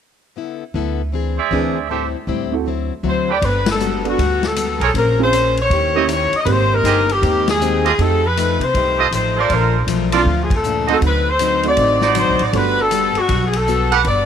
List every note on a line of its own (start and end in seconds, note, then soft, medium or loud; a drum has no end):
0.36 0.62 D3 soft
0.36 0.63 B3 soft
0.36 0.63 E4 soft
0.36 0.64 A4 soft
0.74 1.36 D2 medium
0.74 1.01 D3 medium
0.74 1.01 B3 medium
0.74 1.01 E4 medium
0.74 1.01 A4 medium
1.12 1.39 E3 soft
1.12 1.39 C4 soft
1.12 1.40 D4 soft
1.12 1.40 G#4 medium
1.38 1.87 G#4 medium
1.38 1.87 C5 medium
1.38 1.87 D5 medium
1.38 1.87 E5 medium
1.51 2.13 D2 medium
1.51 1.77 E3 medium
1.51 1.77 C4 medium
1.51 1.74 C4 soft
1.51 1.78 D4 medium
1.51 1.74 D4 soft
1.51 1.78 G#4 medium
1.51 1.74 G#4 soft
1.51 1.75 B4 medium
1.89 2.15 A2 soft
1.89 2.16 G3 soft
1.89 2.16 C4 soft
1.89 2.17 E4 soft
1.89 2.06 G4 medium
1.89 2.06 A4 medium
1.89 2.06 C5 medium
1.89 2.07 E5 medium
2.27 2.89 D2 medium
2.27 2.53 A2 medium
2.27 2.54 G3 medium
2.27 2.54 C4 medium
2.27 2.54 E4 medium
2.52 2.64 C4 medium
2.52 2.65 E4 medium
2.52 2.65 F#4 medium
2.52 2.65 A4 medium
2.66 2.92 D3 soft
2.66 2.92 F#3 soft
2.66 2.93 C4 soft
2.66 2.93 E4 medium
3.03 3.39 D2 medium
3.03 3.30 D3 medium
3.03 3.30 F#3 medium
3.03 3.30 C4 medium
3.03 3.30 E4 medium
3.09 3.30 C5 medium
3.29 3.38 G4 medium
3.29 3.38 A4 medium
3.29 3.38 B4 medium
3.29 3.44 D5 medium
3.29 3.38 G5 medium
3.41 4.14 G1 medium
3.41 3.67 G3 soft
3.41 3.68 B3 soft
3.41 3.68 F#4 soft
3.41 3.69 A4 soft
3.41 kick soft
3.41 ride medium
3.46 3.68 B4 medium
3.66 snare medium
3.66 ride medium
3.72 4.05 A4 medium
3.80 4.06 G3 soft
3.80 4.06 B3 medium
3.80 4.07 F#4 medium
3.80 4.07 A4 medium
3.80 hi-hat pedal medium
4.05 4.17 B3 medium
4.05 4.17 D4 medium
4.05 4.17 F#4 medium
4.05 4.18 A4 medium
4.05 ride soft
4.09 4.45 F#4 medium
4.18 4.77 D2 medium
4.18 4.44 G3 soft
4.18 4.44 B3 soft
4.18 4.44 F#4 soft
4.18 4.45 A4 soft
4.18 kick soft
4.18 ride medium
4.43 4.83 A4 medium
4.43 snare medium
4.43 ride soft
4.56 4.82 G3 medium
4.56 4.83 B3 medium
4.56 4.83 F#4 medium
4.56 4.83 A4 medium
4.56 hi-hat pedal medium
4.56 ride medium
4.80 4.93 B1 medium
4.80 4.90 G#4 medium
4.80 4.90 A#4 medium
4.80 4.91 C5 medium
4.80 4.90 C#5 medium
4.80 ride soft
4.85 4.90 A4 medium
4.94 5.67 A#1 medium
4.94 5.20 A#3 soft
4.94 5.21 C#4 soft
4.94 5.21 G#4 soft
4.94 5.19 A#4 medium
4.94 5.21 C5 soft
4.94 kick soft
4.94 ride medium
5.18 5.31 C4 medium
5.18 5.31 C#4 medium
5.18 5.31 F4 medium
5.18 5.32 G#4 medium
5.23 5.56 C5 loud
5.32 5.58 A#3 medium
5.32 5.59 C#4 medium
5.32 5.58 G#4 medium
5.32 5.59 C5 medium
5.32 hi-hat pedal medium
5.32 ride medium
5.57 ride soft
5.62 6.08 C#5 medium
5.70 6.29 D#2 medium
5.70 5.96 D#3 soft
5.70 5.97 C#4 soft
5.70 5.97 E4 soft
5.70 5.98 G4 soft
5.70 kick soft
5.70 ride medium
5.95 6.07 A#3 medium
5.95 6.07 C#4 medium
5.95 6.05 E4 medium
5.95 6.08 E4 medium
5.95 6.04 G4 medium
5.95 6.08 G4 medium
5.95 6.04 C#5 medium
5.95 6.04 D#5 medium
6.08 6.34 D#3 medium
6.08 6.34 C#4 medium
6.08 6.34 E4 medium
6.08 6.35 G4 medium
6.08 hi-hat pedal soft
6.08 ride medium
6.13 6.34 C#5 medium
6.32 muted upright bass stroke soft
6.32 ride soft
6.37 6.45 D#5 medium
6.45 6.81 G#1 medium
6.45 6.71 G#3 soft
6.45 7.04 A#3 medium
6.45 6.72 C4 soft
6.45 7.04 C4 soft
6.45 6.72 D#4 soft
6.45 7.04 D#4 soft
6.45 6.73 G4 soft
6.45 7.05 G4 medium
6.45 6.48 B4 medium
6.45 kick soft
6.45 ride medium
6.51 6.73 C5 medium
6.74 7.11 A#4 loud
6.83 7.19 G1 medium
6.83 7.10 G#3 medium
6.83 7.10 C4 medium
6.83 7.10 D#4 medium
6.83 7.01 G4 medium
6.83 7.11 G4 medium
6.83 7.01 G#4 medium
6.83 7.01 C5 medium
6.83 7.01 D#5 medium
6.83 hi-hat pedal soft
6.83 ride medium
7.09 7.49 G4 medium
7.09 ride soft
7.22 7.94 D#2 medium
7.22 7.48 G#3 soft
7.22 7.49 C4 soft
7.22 7.49 D#4 soft
7.22 7.49 G4 soft
7.22 kick soft
7.22 ride medium
7.47 7.84 G#4 medium
7.47 snare medium
7.47 ride medium
7.61 7.86 G#3 medium
7.61 7.87 C4 medium
7.61 7.87 D#4 medium
7.61 7.87 G4 medium
7.61 hi-hat pedal medium
7.85 7.94 F4 medium
7.85 7.94 G4 medium
7.85 7.99 G#4 medium
7.85 7.94 A4 medium
7.85 7.94 D#5 medium
7.85 ride soft
7.98 8.57 F2 medium
7.98 8.24 F3 soft
7.98 8.21 A3 soft
7.98 8.25 A3 soft
7.98 8.21 C4 soft
7.98 8.21 D#4 soft
7.98 8.25 D#4 soft
7.98 8.25 G4 soft
7.98 8.22 G4 medium
7.98 8.25 A4 medium
7.98 kick soft
7.98 ride medium
8.27 8.63 B4 medium
8.37 8.62 F3 medium
8.37 8.63 A3 medium
8.37 8.63 D#4 medium
8.37 8.63 G4 medium
8.37 hi-hat pedal medium
8.37 ride medium
8.60 8.73 C3 medium
8.60 ride soft
8.64 9.14 C5 medium
8.74 9.10 C2 medium
8.74 9.00 F3 soft
8.74 9.01 A3 soft
8.74 9.01 D#4 soft
8.74 9.01 G4 soft
8.74 kick soft
8.74 ride medium
8.98 9.07 F4 medium
8.98 9.08 G4 medium
8.98 9.08 A4 medium
8.98 9.08 D#5 loud
9.11 9.47 A1 medium
9.11 9.38 F3 medium
9.11 9.39 A3 medium
9.11 9.39 D#4 medium
9.11 9.39 G4 medium
9.11 hi-hat pedal soft
9.11 ride medium
9.16 9.37 C5 medium
9.37 9.86 F4 medium
9.37 9.86 A4 medium
9.37 9.86 A#4 medium
9.37 9.86 C5 medium
9.37 9.51 D5 medium
9.50 9.85 A#1 medium
9.50 9.76 A#2 soft
9.50 9.76 F3 soft
9.50 9.77 A3 soft
9.50 9.77 D4 soft
9.50 kick soft
9.50 ride medium
9.54 9.76 A#4 medium
9.87 10.23 B1 medium
9.87 10.14 A#2 medium
9.87 10.14 F3 medium
9.87 10.15 A3 medium
9.87 10.15 D4 medium
9.87 hi-hat pedal medium
9.87 ride medium
10.12 10.25 A3 medium
10.12 10.25 C4 medium
10.12 10.25 D4 medium
10.12 10.21 F4 medium
10.12 10.26 F4 medium
10.12 10.22 A4 medium
10.12 10.22 A#4 medium
10.12 10.21 D5 medium
10.12 ride medium
10.16 10.42 F4 medium
10.25 10.98 D2 medium
10.25 10.51 A#2 soft
10.25 10.52 F3 soft
10.25 10.52 A3 soft
10.25 10.53 D4 soft
10.25 kick soft
10.43 10.51 G#4 medium
10.50 kick medium
10.50 ride medium
10.56 10.91 A4 medium
10.63 10.90 A#2 medium
10.63 10.90 F3 medium
10.63 10.90 A3 medium
10.63 10.91 D4 medium
10.63 hi-hat pedal medium
10.87 11.01 A3 medium
10.87 11.01 C4 medium
10.87 10.97 D#4 medium
10.87 11.01 D#4 medium
10.87 10.97 F#4 medium
10.87 11.02 F#4 medium
10.87 10.97 C5 medium
10.87 10.97 D#5 medium
10.87 ride soft
10.94 10.99 A4 medium
11.01 11.74 D2 medium
11.01 11.28 D3 soft
11.01 11.28 F#3 soft
11.01 11.28 C4 soft
11.01 11.29 D#4 soft
11.01 kick soft
11.01 ride medium
11.06 11.27 B4 medium
11.29 11.66 C5 medium
11.39 11.66 D3 medium
11.39 11.66 F#3 medium
11.39 11.66 C4 medium
11.39 11.67 D#4 medium
11.39 hi-hat pedal medium
11.39 ride medium
11.63 12.13 A3 medium
11.63 12.13 C4 medium
11.63 12.13 D#4 medium
11.63 12.14 F#4 medium
11.63 ride soft
11.68 12.14 D5 loud
11.77 12.24 A1 medium
11.77 12.04 D3 soft
11.77 12.04 F#3 soft
11.77 12.04 C4 soft
11.77 12.05 D#4 soft
11.77 kick soft
11.77 ride medium
12.01 12.51 D#4 medium
12.01 12.51 F#4 medium
12.01 12.51 C5 medium
12.01 12.51 D5 loud
12.01 snare soft
12.15 12.41 D3 medium
12.15 12.41 F#3 medium
12.15 12.42 C4 medium
12.15 12.42 D#4 medium
12.15 hi-hat pedal soft
12.15 ride medium
12.19 12.40 C5 medium
12.28 12.40 C2 medium
12.39 12.52 A1 medium
12.39 ride soft
12.43 12.55 D5 medium
12.53 13.12 G1 medium
12.53 12.79 G3 soft
12.53 13.59 A3 medium
12.53 13.59 B3 soft
12.53 12.80 B3 soft
12.53 13.59 D4 medium
12.53 12.80 F#4 soft
12.53 13.60 F#4 medium
12.53 12.81 A4 soft
12.53 12.80 B4 loud
12.53 kick soft
12.53 ride medium
12.81 13.18 A4 loud
12.91 13.17 G3 medium
12.91 13.18 B3 medium
12.91 13.18 F#4 medium
12.91 13.18 A4 medium
12.91 hi-hat pedal medium
12.91 ride medium
13.15 13.46 F#4 medium
13.15 muted upright bass stroke soft
13.15 ride soft
13.29 14.01 B1 medium
13.29 13.55 G3 soft
13.29 13.56 B3 soft
13.29 13.56 F#4 soft
13.29 13.56 A4 soft
13.29 kick soft
13.29 ride medium
13.48 13.55 G#4 medium
13.53 13.93 A4 medium
13.53 ride medium
13.67 13.93 G3 medium
13.67 13.94 B3 medium
13.67 13.94 F#4 medium
13.67 13.94 A4 medium
13.67 hi-hat pedal medium
13.91 14.01 G4 medium
13.91 14.01 A4 medium
13.91 14.01 B4 medium
13.91 14.06 B4 medium
13.91 14.01 F#5 loud
13.91 ride soft
14.05 14.26 G1 medium
14.05 14.26 G3 soft
14.05 14.26 B3 soft
14.05 14.26 D5 loud
14.05 kick soft
14.05 ride medium
14.09 14.26 F#4 soft
14.09 14.26 A4 soft